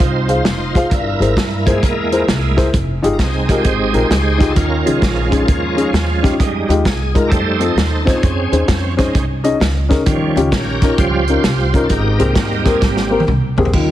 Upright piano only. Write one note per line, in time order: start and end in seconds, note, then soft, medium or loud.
0.28 0.39 F4 medium
0.28 0.39 G#4 medium
0.28 0.39 C5 medium
0.28 0.39 F5 medium
0.75 0.85 F4 medium
0.75 0.86 G#4 medium
0.75 0.86 C5 medium
0.75 0.86 F5 medium
0.92 1.63 G2 medium
1.20 1.31 E4 medium
1.20 1.31 G#4 medium
1.20 1.31 A#4 medium
1.20 1.31 C5 medium
1.66 1.76 E4 medium
1.66 1.77 G#4 medium
1.66 1.77 A#4 medium
1.66 1.77 C5 medium
2.12 2.22 E4 medium
2.12 2.22 G#4 medium
2.12 2.22 A#4 medium
2.12 2.22 C5 medium
2.57 2.67 E4 medium
2.57 2.67 G#4 medium
2.57 2.68 A#4 medium
2.57 2.68 C5 medium
3.02 3.13 D#4 medium
3.02 3.13 F4 medium
3.02 3.14 G4 medium
3.02 3.14 G#4 medium
3.49 3.59 D#4 medium
3.49 3.59 F4 medium
3.49 3.60 G4 medium
3.49 3.60 A#4 medium
3.92 4.04 D#4 medium
3.92 4.04 F4 medium
3.92 4.04 G4 medium
3.92 4.04 A#4 medium
4.38 4.49 D#4 medium
4.38 4.50 F4 medium
4.38 4.50 G4 medium
4.38 4.50 G#4 medium
4.55 5.27 D#3 medium
4.85 4.96 C#4 medium
4.85 4.96 D#4 medium
4.85 4.96 F4 medium
4.85 4.96 G#4 medium
5.30 5.41 C#4 medium
5.30 5.41 D#4 medium
5.30 5.42 F4 medium
5.30 5.42 G#4 medium
5.76 5.87 C#4 medium
5.76 5.87 D#4 medium
5.76 5.88 F4 medium
5.76 5.88 G#4 medium
6.22 6.33 C#4 medium
6.22 6.33 D#4 medium
6.22 6.34 F4 medium
6.22 6.34 G4 medium
6.69 6.79 G#3 medium
6.69 6.80 D#4 medium
6.69 6.80 F4 medium
6.69 6.80 G4 medium
7.15 7.25 G#3 medium
7.15 7.25 D#4 medium
7.15 7.26 F4 medium
7.15 7.26 A#4 medium
7.59 7.71 C4 medium
7.59 7.71 D#4 medium
7.59 7.71 F4 medium
7.59 7.71 A4 medium
8.05 8.16 C4 medium
8.05 8.16 D#4 medium
8.05 8.17 F4 medium
8.05 8.17 C5 medium
8.52 8.63 C#4 medium
8.52 8.62 D#4 medium
8.52 8.63 G#4 medium
8.52 8.63 C5 medium
8.97 9.08 C#4 medium
8.97 9.08 D#4 medium
8.97 9.08 G#4 medium
8.97 9.09 C5 medium
9.44 9.54 C#4 medium
9.44 9.54 D#4 medium
9.44 9.55 G#4 medium
9.44 9.55 D#5 medium
9.89 10.00 C#4 medium
9.89 10.00 D#4 medium
9.89 10.00 G#4 medium
9.89 10.00 A#4 medium
10.06 10.78 D#3 medium
10.36 10.46 C#4 medium
10.36 10.46 D#4 medium
10.36 10.47 F4 medium
10.36 10.47 G4 medium
10.82 10.92 C#4 medium
10.82 10.92 D#4 medium
10.82 10.93 F4 medium
10.82 10.93 A#4 medium
11.29 11.39 C#4 medium
11.29 11.39 D#4 medium
11.29 11.39 F4 medium
11.29 11.39 A#4 medium
11.73 11.84 C#4 medium
11.73 11.84 D#4 medium
11.73 11.84 F4 medium
11.73 11.85 A#4 medium
11.90 12.61 G#2 medium
12.19 12.29 A#3 medium
12.19 12.29 C4 medium
12.19 12.30 G4 medium
12.19 12.30 G#4 medium
12.65 12.75 A#3 medium
12.65 12.76 C4 medium
12.65 12.76 G4 medium
12.65 12.76 A#4 medium
13.11 13.21 A#3 medium
13.11 13.21 C4 medium
13.11 13.22 G4 medium
13.11 13.22 A#4 medium
13.57 13.68 A#3 medium
13.57 13.68 C4 medium
13.57 13.68 G4 medium
13.57 13.68 G#4 medium
13.75 13.91 D#3 medium